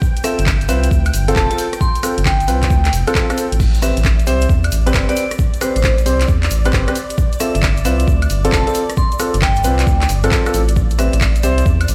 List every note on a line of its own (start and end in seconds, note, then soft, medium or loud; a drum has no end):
0.00 3.61 G5 medium
0.00 kick loud
0.00 shaker soft
0.17 closed hi-hat soft
0.17 shaker soft
0.24 0.37 C4 medium
0.24 0.37 F4 medium
0.24 0.37 A4 medium
0.24 0.33 E5 medium
0.24 cross-stick medium
0.24 open hi-hat loud
0.24 shaker medium
0.39 0.70 G1 loud
0.39 0.44 E5 medium
0.39 closed hi-hat medium
0.39 shaker soft
0.46 kick loud
0.46 clap loud
0.46 shaker medium
0.61 closed hi-hat soft
0.61 shaker soft
0.69 0.88 C2 medium
0.69 0.86 C4 medium
0.69 0.86 F4 medium
0.69 0.86 B4 loud
0.69 0.89 E5 medium
0.69 open hi-hat medium
0.69 shaker medium
0.84 closed hi-hat medium
0.84 shaker soft
0.91 1.11 D2 loud
0.91 kick loud
0.91 shaker medium
1.05 closed hi-hat medium
1.05 high woodblock medium
1.05 shaker soft
1.14 1.33 G1 loud
1.14 open hi-hat loud
1.14 shaker medium
1.28 1.47 C4 loud
1.28 1.47 F4 medium
1.28 1.47 A4 loud
1.28 closed hi-hat medium
1.28 shaker soft
1.36 1.48 F1 medium
1.36 1.45 A5 medium
1.36 kick loud
1.36 clap loud
1.36 shaker soft
1.50 1.64 C4 medium
1.50 1.64 F4 medium
1.50 1.64 A4 loud
1.50 1.56 A5 medium
1.50 closed hi-hat medium
1.50 shaker soft
1.58 open hi-hat loud
1.58 shaker medium
1.73 cross-stick medium
1.73 closed hi-hat medium
1.73 shaker soft
1.81 2.18 C6 medium
1.81 kick loud
1.81 shaker soft
1.95 closed hi-hat soft
1.95 shaker soft
2.03 2.16 C4 medium
2.03 2.16 F4 medium
2.03 2.16 A4 medium
2.03 cross-stick medium
2.03 open hi-hat loud
2.03 high woodblock medium
2.03 shaker loud
2.18 2.49 G1 loud
2.18 closed hi-hat medium
2.18 shaker soft
2.25 2.90 G5 medium
2.25 kick loud
2.25 clap loud
2.25 shaker soft
2.40 closed hi-hat soft
2.40 shaker soft
2.48 2.67 C2 medium
2.48 2.66 C4 medium
2.48 2.66 F4 medium
2.48 2.66 B4 loud
2.48 open hi-hat loud
2.48 shaker medium
2.62 kick medium
2.62 clap medium
2.62 closed hi-hat medium
2.62 shaker soft
2.70 2.90 D2 loud
2.70 kick loud
2.70 shaker medium
2.85 clap medium
2.85 closed hi-hat medium
2.85 shaker soft
2.93 3.04 F1 medium
2.93 open hi-hat loud
2.93 shaker medium
3.07 3.26 C4 loud
3.07 3.26 F4 medium
3.07 3.26 A4 loud
3.07 closed hi-hat medium
3.07 high woodblock medium
3.07 shaker soft
3.15 kick loud
3.15 clap loud
3.15 shaker medium
3.30 3.43 C4 loud
3.30 3.43 F4 medium
3.30 3.43 A4 loud
3.30 cross-stick medium
3.30 closed hi-hat medium
3.30 high woodblock medium
3.30 shaker soft
3.38 open hi-hat loud
3.38 shaker medium
3.52 3.92 A1 loud
3.52 closed hi-hat medium
3.52 shaker soft
3.60 10.75 D5 medium
3.60 kick loud
3.60 crash medium
3.60 shaker medium
3.74 closed hi-hat soft
3.74 shaker soft
3.82 3.95 C4 medium
3.82 3.95 G4 medium
3.82 3.95 B4 medium
3.82 3.92 E5 medium
3.82 cross-stick medium
3.82 open hi-hat loud
3.82 shaker medium
3.97 4.29 A1 loud
3.97 4.02 E5 medium
3.97 closed hi-hat medium
3.97 shaker soft
4.04 kick loud
4.04 clap loud
4.04 shaker medium
4.19 closed hi-hat soft
4.19 shaker soft
4.27 4.46 C2 medium
4.27 4.45 C4 medium
4.27 4.45 G4 medium
4.27 4.45 C5 loud
4.27 4.47 E5 medium
4.27 open hi-hat loud
4.27 shaker medium
4.41 closed hi-hat medium
4.41 shaker soft
4.49 4.69 E2 medium
4.49 kick loud
4.49 shaker soft
4.63 closed hi-hat medium
4.63 high woodblock medium
4.63 shaker soft
4.72 4.91 A1 loud
4.72 open hi-hat loud
4.72 shaker medium
4.86 5.05 C4 loud
4.86 5.05 G4 medium
4.86 5.05 B4 loud
4.86 closed hi-hat medium
4.86 shaker soft
4.93 5.06 G1 medium
4.93 kick loud
4.93 clap loud
4.93 shaker medium
5.09 5.22 C4 medium
5.09 5.22 G4 medium
5.09 5.22 B4 loud
5.09 5.27 D5 medium
5.09 closed hi-hat medium
5.09 shaker soft
5.16 open hi-hat loud
5.16 shaker loud
5.31 cross-stick medium
5.31 closed hi-hat medium
5.31 shaker soft
5.38 kick loud
5.38 shaker medium
5.54 closed hi-hat soft
5.54 shaker soft
5.61 5.74 C4 medium
5.61 5.74 G4 medium
5.61 5.74 B4 medium
5.61 5.71 C5 medium
5.61 cross-stick medium
5.61 open hi-hat loud
5.61 high woodblock medium
5.61 shaker medium
5.76 6.08 A1 loud
5.76 5.81 C5 medium
5.76 closed hi-hat medium
5.76 shaker soft
5.83 kick loud
5.83 clap loud
5.83 shaker medium
5.98 closed hi-hat soft
5.98 shaker soft
6.06 6.25 C2 medium
6.06 6.24 C4 medium
6.06 6.24 G4 medium
6.06 6.24 C5 loud
6.06 open hi-hat loud
6.06 shaker medium
6.21 clap medium
6.21 closed hi-hat medium
6.21 shaker soft
6.28 6.48 E2 medium
6.28 kick loud
6.28 shaker medium
6.43 clap medium
6.43 closed hi-hat medium
6.43 shaker soft
6.51 6.70 A1 loud
6.51 open hi-hat loud
6.51 shaker loud
6.65 6.84 C4 loud
6.65 6.84 G4 medium
6.65 6.84 B4 loud
6.65 closed hi-hat medium
6.65 high woodblock medium
6.65 shaker soft
6.73 6.85 G1 medium
6.73 kick loud
6.73 clap loud
6.73 shaker medium
6.87 6.95 C4 medium
6.87 6.95 G4 medium
6.87 6.95 B4 loud
6.87 cross-stick medium
6.87 closed hi-hat medium
6.87 high woodblock medium
6.87 shaker soft
6.95 open hi-hat loud
6.95 shaker loud
7.10 closed hi-hat medium
7.10 shaker soft
7.18 kick loud
7.18 shaker medium
7.33 closed hi-hat soft
7.33 shaker soft
7.40 7.53 C4 medium
7.40 7.53 F4 medium
7.40 7.53 A4 medium
7.40 7.50 E5 medium
7.40 cross-stick medium
7.40 open hi-hat loud
7.40 shaker loud
7.55 7.87 G1 loud
7.55 7.60 E5 medium
7.55 closed hi-hat medium
7.55 shaker soft
7.63 kick loud
7.63 clap loud
7.63 shaker medium
7.77 closed hi-hat soft
7.77 shaker soft
7.85 8.05 C2 medium
7.85 8.03 C4 medium
7.85 8.03 F4 medium
7.85 8.03 B4 loud
7.85 8.05 E5 loud
7.85 open hi-hat medium
7.85 shaker loud
7.99 closed hi-hat medium
7.99 shaker soft
8.08 8.27 D2 loud
8.08 kick loud
8.08 shaker soft
8.22 closed hi-hat soft
8.22 high woodblock medium
8.22 shaker soft
8.30 8.49 G1 loud
8.30 open hi-hat loud
8.30 shaker loud
8.44 8.64 C4 loud
8.44 8.64 F4 medium
8.44 8.63 A4 loud
8.44 closed hi-hat medium
8.44 shaker soft
8.52 8.64 F1 medium
8.52 8.62 A5 medium
8.52 kick loud
8.52 clap loud
8.52 shaker medium
8.67 8.80 C4 medium
8.67 8.80 F4 medium
8.67 8.80 A4 loud
8.67 8.72 A5 medium
8.67 closed hi-hat soft
8.67 shaker soft
8.74 open hi-hat loud
8.74 shaker medium
8.90 cross-stick medium
8.90 closed hi-hat medium
8.90 shaker soft
8.97 9.34 C6 medium
8.97 kick loud
8.97 shaker soft
9.12 closed hi-hat soft
9.12 shaker soft
9.19 9.32 C4 medium
9.19 9.32 F4 medium
9.19 9.32 A4 medium
9.19 cross-stick medium
9.19 open hi-hat loud
9.19 high woodblock medium
9.19 shaker loud
9.34 9.66 G1 loud
9.34 closed hi-hat medium
9.34 shaker soft
9.42 10.06 G5 medium
9.42 kick loud
9.42 clap loud
9.42 shaker medium
9.56 closed hi-hat soft
9.56 shaker soft
9.64 9.84 C2 medium
9.64 9.82 C4 medium
9.64 9.82 F4 medium
9.64 9.82 B4 loud
9.64 open hi-hat medium
9.64 shaker medium
9.79 clap medium
9.79 closed hi-hat medium
9.79 shaker soft
9.87 10.06 D2 medium
9.87 kick loud
9.87 shaker medium
10.02 clap medium
10.02 closed hi-hat soft
10.02 shaker soft
10.09 10.29 G1 loud
10.09 open hi-hat loud
10.09 shaker loud
10.23 10.43 C4 loud
10.23 10.43 F4 medium
10.23 10.43 A4 loud
10.23 closed hi-hat medium
10.23 high woodblock medium
10.23 shaker soft
10.31 kick loud
10.31 clap loud
10.31 shaker medium
10.46 10.60 C4 medium
10.46 10.60 F4 medium
10.46 10.60 A4 loud
10.46 cross-stick medium
10.46 closed hi-hat soft
10.46 high woodblock medium
10.46 shaker soft
10.54 11.09 A1 loud
10.54 open hi-hat medium
10.54 shaker medium
10.68 closed hi-hat medium
10.68 shaker soft
10.76 11.95 D5 medium
10.76 kick loud
10.76 shaker medium
10.90 closed hi-hat soft
10.90 shaker soft
10.99 11.11 C4 medium
10.99 11.11 G4 medium
10.99 11.11 B4 medium
10.99 11.08 E5 medium
10.99 cross-stick medium
10.99 open hi-hat loud
10.99 shaker medium
11.13 11.45 A1 loud
11.13 11.18 E5 medium
11.13 closed hi-hat medium
11.13 shaker soft
11.21 kick loud
11.21 clap loud
11.21 shaker medium
11.36 closed hi-hat soft
11.36 shaker soft
11.43 11.63 C2 medium
11.43 11.61 C4 medium
11.43 11.61 G4 medium
11.43 11.61 C5 loud
11.43 11.64 E5 loud
11.43 open hi-hat medium
11.43 shaker medium
11.58 closed hi-hat medium
11.58 shaker soft
11.66 11.85 E2 medium
11.66 kick loud
11.66 shaker soft
11.81 closed hi-hat medium
11.81 high woodblock medium
11.81 shaker soft
11.88 11.95 A1 loud
11.88 open hi-hat loud
11.88 shaker loud